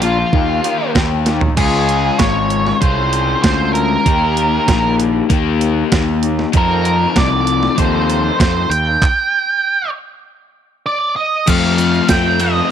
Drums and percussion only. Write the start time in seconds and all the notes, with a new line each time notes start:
0.02 closed hi-hat
0.33 kick
0.64 closed hi-hat
0.95 kick, snare
1.26 snare, closed hi-hat
1.41 floor tom
1.57 kick, closed hi-hat, crash
1.89 closed hi-hat
2.19 kick, snare, closed hi-hat
2.50 closed hi-hat
2.67 snare
2.82 kick, closed hi-hat
3.13 closed hi-hat
3.44 kick, snare, closed hi-hat
3.75 closed hi-hat
4.06 kick, closed hi-hat
4.37 closed hi-hat
4.68 kick, snare, closed hi-hat
5.00 closed hi-hat
5.30 kick, closed hi-hat
5.61 closed hi-hat
5.92 kick, snare, closed hi-hat
6.23 closed hi-hat
6.39 snare
6.53 kick, closed hi-hat
6.85 closed hi-hat
7.16 kick, snare, closed hi-hat
7.47 closed hi-hat
7.63 snare
7.78 kick, closed hi-hat
8.10 closed hi-hat
8.40 kick, snare, closed hi-hat
8.71 closed hi-hat
9.02 kick, clap
11.47 kick, crash, ride, shaker
11.78 ride, shaker
11.93 shaker
12.09 kick, snare, ride, shaker
12.40 ride, shaker